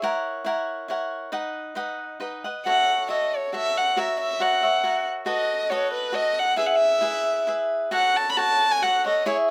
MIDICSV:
0, 0, Header, 1, 3, 480
1, 0, Start_track
1, 0, Tempo, 436999
1, 22, Time_signature, 3, 2, 24, 8
1, 7222, Tempo, 447761
1, 10363, End_track
2, 0, Start_track
2, 0, Title_t, "Violin"
2, 0, Program_c, 0, 40
2, 2923, Note_on_c, 0, 78, 82
2, 3372, Note_off_c, 0, 78, 0
2, 3417, Note_on_c, 0, 75, 68
2, 3692, Note_on_c, 0, 73, 68
2, 3708, Note_off_c, 0, 75, 0
2, 3897, Note_off_c, 0, 73, 0
2, 3903, Note_on_c, 0, 76, 87
2, 4152, Note_on_c, 0, 78, 79
2, 4168, Note_off_c, 0, 76, 0
2, 4384, Note_on_c, 0, 76, 71
2, 4401, Note_off_c, 0, 78, 0
2, 4611, Note_off_c, 0, 76, 0
2, 4617, Note_on_c, 0, 76, 81
2, 4851, Note_on_c, 0, 78, 80
2, 4868, Note_off_c, 0, 76, 0
2, 5573, Note_off_c, 0, 78, 0
2, 5799, Note_on_c, 0, 75, 77
2, 6260, Note_on_c, 0, 73, 88
2, 6276, Note_off_c, 0, 75, 0
2, 6514, Note_off_c, 0, 73, 0
2, 6521, Note_on_c, 0, 71, 79
2, 6752, Note_on_c, 0, 75, 90
2, 6768, Note_off_c, 0, 71, 0
2, 7020, Note_on_c, 0, 78, 86
2, 7037, Note_off_c, 0, 75, 0
2, 7228, Note_off_c, 0, 78, 0
2, 7235, Note_on_c, 0, 76, 73
2, 7320, Note_on_c, 0, 78, 54
2, 7336, Note_off_c, 0, 76, 0
2, 7424, Note_on_c, 0, 76, 85
2, 7440, Note_off_c, 0, 78, 0
2, 8200, Note_off_c, 0, 76, 0
2, 8677, Note_on_c, 0, 78, 81
2, 8929, Note_on_c, 0, 81, 84
2, 8945, Note_off_c, 0, 78, 0
2, 9081, Note_off_c, 0, 81, 0
2, 9086, Note_on_c, 0, 83, 74
2, 9151, Note_on_c, 0, 81, 93
2, 9167, Note_off_c, 0, 83, 0
2, 9519, Note_on_c, 0, 80, 89
2, 9535, Note_off_c, 0, 81, 0
2, 9639, Note_on_c, 0, 78, 79
2, 9655, Note_off_c, 0, 80, 0
2, 9888, Note_off_c, 0, 78, 0
2, 9898, Note_on_c, 0, 75, 74
2, 10099, Note_off_c, 0, 75, 0
2, 10106, Note_on_c, 0, 73, 75
2, 10218, Note_off_c, 0, 73, 0
2, 10363, End_track
3, 0, Start_track
3, 0, Title_t, "Cavaquinho"
3, 0, Program_c, 1, 24
3, 24, Note_on_c, 1, 64, 70
3, 38, Note_on_c, 1, 70, 70
3, 39, Note_on_c, 1, 73, 72
3, 40, Note_on_c, 1, 78, 67
3, 476, Note_off_c, 1, 64, 0
3, 489, Note_on_c, 1, 64, 59
3, 492, Note_off_c, 1, 70, 0
3, 499, Note_off_c, 1, 73, 0
3, 505, Note_off_c, 1, 78, 0
3, 505, Note_on_c, 1, 70, 65
3, 510, Note_on_c, 1, 78, 63
3, 513, Note_on_c, 1, 73, 55
3, 957, Note_off_c, 1, 64, 0
3, 970, Note_on_c, 1, 64, 46
3, 972, Note_off_c, 1, 70, 0
3, 976, Note_off_c, 1, 73, 0
3, 985, Note_on_c, 1, 70, 48
3, 988, Note_on_c, 1, 73, 47
3, 992, Note_off_c, 1, 78, 0
3, 996, Note_on_c, 1, 78, 58
3, 1445, Note_off_c, 1, 70, 0
3, 1446, Note_off_c, 1, 64, 0
3, 1449, Note_on_c, 1, 71, 72
3, 1451, Note_off_c, 1, 73, 0
3, 1451, Note_on_c, 1, 63, 56
3, 1455, Note_off_c, 1, 78, 0
3, 1455, Note_on_c, 1, 75, 67
3, 1460, Note_on_c, 1, 78, 59
3, 1912, Note_off_c, 1, 63, 0
3, 1921, Note_off_c, 1, 71, 0
3, 1925, Note_on_c, 1, 63, 55
3, 1927, Note_off_c, 1, 75, 0
3, 1934, Note_on_c, 1, 71, 57
3, 1936, Note_off_c, 1, 78, 0
3, 1940, Note_on_c, 1, 75, 57
3, 1940, Note_on_c, 1, 78, 63
3, 2400, Note_off_c, 1, 63, 0
3, 2408, Note_off_c, 1, 71, 0
3, 2413, Note_on_c, 1, 63, 36
3, 2421, Note_off_c, 1, 75, 0
3, 2421, Note_on_c, 1, 71, 50
3, 2428, Note_off_c, 1, 78, 0
3, 2433, Note_on_c, 1, 78, 44
3, 2435, Note_on_c, 1, 75, 39
3, 2670, Note_off_c, 1, 78, 0
3, 2675, Note_off_c, 1, 63, 0
3, 2677, Note_off_c, 1, 75, 0
3, 2679, Note_off_c, 1, 71, 0
3, 2684, Note_on_c, 1, 78, 45
3, 2690, Note_on_c, 1, 75, 35
3, 2699, Note_on_c, 1, 71, 34
3, 2913, Note_off_c, 1, 78, 0
3, 2916, Note_off_c, 1, 75, 0
3, 2920, Note_on_c, 1, 66, 50
3, 2921, Note_off_c, 1, 71, 0
3, 2926, Note_on_c, 1, 69, 49
3, 2930, Note_on_c, 1, 76, 55
3, 2932, Note_on_c, 1, 73, 56
3, 3387, Note_off_c, 1, 66, 0
3, 3388, Note_off_c, 1, 69, 0
3, 3392, Note_on_c, 1, 66, 45
3, 3401, Note_off_c, 1, 73, 0
3, 3401, Note_on_c, 1, 69, 49
3, 3404, Note_off_c, 1, 76, 0
3, 3406, Note_on_c, 1, 73, 49
3, 3409, Note_on_c, 1, 76, 50
3, 3869, Note_off_c, 1, 66, 0
3, 3872, Note_off_c, 1, 69, 0
3, 3874, Note_on_c, 1, 66, 38
3, 3878, Note_off_c, 1, 73, 0
3, 3878, Note_off_c, 1, 76, 0
3, 3885, Note_on_c, 1, 69, 41
3, 3891, Note_on_c, 1, 76, 46
3, 3892, Note_on_c, 1, 73, 46
3, 4351, Note_off_c, 1, 66, 0
3, 4352, Note_off_c, 1, 73, 0
3, 4352, Note_off_c, 1, 76, 0
3, 4356, Note_on_c, 1, 66, 52
3, 4358, Note_off_c, 1, 69, 0
3, 4362, Note_on_c, 1, 70, 53
3, 4365, Note_on_c, 1, 73, 56
3, 4365, Note_on_c, 1, 76, 74
3, 4822, Note_off_c, 1, 70, 0
3, 4828, Note_off_c, 1, 66, 0
3, 4832, Note_off_c, 1, 73, 0
3, 4833, Note_on_c, 1, 66, 51
3, 4835, Note_on_c, 1, 70, 53
3, 4838, Note_off_c, 1, 76, 0
3, 4845, Note_on_c, 1, 73, 55
3, 4851, Note_on_c, 1, 76, 59
3, 5071, Note_off_c, 1, 76, 0
3, 5084, Note_on_c, 1, 76, 40
3, 5085, Note_off_c, 1, 73, 0
3, 5088, Note_off_c, 1, 66, 0
3, 5089, Note_off_c, 1, 70, 0
3, 5098, Note_on_c, 1, 73, 38
3, 5104, Note_on_c, 1, 70, 34
3, 5301, Note_off_c, 1, 73, 0
3, 5305, Note_off_c, 1, 70, 0
3, 5309, Note_on_c, 1, 66, 46
3, 5313, Note_off_c, 1, 76, 0
3, 5314, Note_on_c, 1, 73, 41
3, 5318, Note_on_c, 1, 70, 42
3, 5328, Note_on_c, 1, 76, 45
3, 5762, Note_off_c, 1, 66, 0
3, 5772, Note_off_c, 1, 70, 0
3, 5775, Note_on_c, 1, 66, 61
3, 5776, Note_on_c, 1, 69, 62
3, 5780, Note_off_c, 1, 73, 0
3, 5781, Note_off_c, 1, 76, 0
3, 5784, Note_on_c, 1, 71, 66
3, 5785, Note_on_c, 1, 75, 68
3, 6250, Note_off_c, 1, 66, 0
3, 6256, Note_off_c, 1, 69, 0
3, 6261, Note_off_c, 1, 75, 0
3, 6263, Note_on_c, 1, 66, 56
3, 6271, Note_on_c, 1, 69, 62
3, 6272, Note_off_c, 1, 71, 0
3, 6277, Note_on_c, 1, 71, 68
3, 6281, Note_on_c, 1, 75, 66
3, 6712, Note_off_c, 1, 66, 0
3, 6718, Note_off_c, 1, 69, 0
3, 6725, Note_on_c, 1, 66, 48
3, 6727, Note_off_c, 1, 71, 0
3, 6732, Note_off_c, 1, 75, 0
3, 6732, Note_on_c, 1, 69, 54
3, 6741, Note_on_c, 1, 71, 49
3, 6745, Note_on_c, 1, 75, 43
3, 7204, Note_off_c, 1, 66, 0
3, 7206, Note_off_c, 1, 71, 0
3, 7208, Note_on_c, 1, 64, 65
3, 7213, Note_off_c, 1, 69, 0
3, 7217, Note_off_c, 1, 75, 0
3, 7217, Note_on_c, 1, 68, 55
3, 7219, Note_on_c, 1, 71, 53
3, 7222, Note_on_c, 1, 76, 63
3, 7673, Note_off_c, 1, 64, 0
3, 7683, Note_off_c, 1, 68, 0
3, 7686, Note_on_c, 1, 64, 54
3, 7687, Note_off_c, 1, 76, 0
3, 7688, Note_off_c, 1, 71, 0
3, 7695, Note_on_c, 1, 68, 54
3, 7700, Note_on_c, 1, 76, 60
3, 7701, Note_on_c, 1, 71, 55
3, 8168, Note_off_c, 1, 64, 0
3, 8173, Note_off_c, 1, 68, 0
3, 8176, Note_off_c, 1, 71, 0
3, 8181, Note_on_c, 1, 64, 50
3, 8182, Note_off_c, 1, 76, 0
3, 8185, Note_on_c, 1, 68, 46
3, 8189, Note_on_c, 1, 71, 48
3, 8198, Note_on_c, 1, 76, 49
3, 8650, Note_off_c, 1, 64, 0
3, 8654, Note_off_c, 1, 71, 0
3, 8654, Note_on_c, 1, 66, 68
3, 8656, Note_off_c, 1, 68, 0
3, 8659, Note_on_c, 1, 73, 61
3, 8660, Note_on_c, 1, 69, 58
3, 8663, Note_off_c, 1, 76, 0
3, 8667, Note_on_c, 1, 78, 70
3, 9133, Note_off_c, 1, 66, 0
3, 9136, Note_off_c, 1, 69, 0
3, 9145, Note_off_c, 1, 78, 0
3, 9145, Note_on_c, 1, 66, 54
3, 9149, Note_on_c, 1, 69, 54
3, 9157, Note_off_c, 1, 73, 0
3, 9158, Note_on_c, 1, 78, 67
3, 9162, Note_on_c, 1, 73, 56
3, 9615, Note_off_c, 1, 66, 0
3, 9623, Note_off_c, 1, 69, 0
3, 9628, Note_on_c, 1, 66, 52
3, 9634, Note_off_c, 1, 78, 0
3, 9635, Note_on_c, 1, 69, 51
3, 9636, Note_off_c, 1, 73, 0
3, 9647, Note_on_c, 1, 78, 55
3, 9648, Note_on_c, 1, 73, 41
3, 9857, Note_off_c, 1, 78, 0
3, 9870, Note_off_c, 1, 73, 0
3, 9870, Note_on_c, 1, 78, 47
3, 9882, Note_off_c, 1, 66, 0
3, 9882, Note_off_c, 1, 69, 0
3, 9883, Note_on_c, 1, 73, 41
3, 9894, Note_on_c, 1, 69, 38
3, 10092, Note_off_c, 1, 73, 0
3, 10100, Note_off_c, 1, 69, 0
3, 10100, Note_off_c, 1, 78, 0
3, 10101, Note_on_c, 1, 64, 69
3, 10104, Note_on_c, 1, 68, 58
3, 10105, Note_on_c, 1, 73, 72
3, 10110, Note_on_c, 1, 76, 74
3, 10363, Note_off_c, 1, 64, 0
3, 10363, Note_off_c, 1, 68, 0
3, 10363, Note_off_c, 1, 73, 0
3, 10363, Note_off_c, 1, 76, 0
3, 10363, End_track
0, 0, End_of_file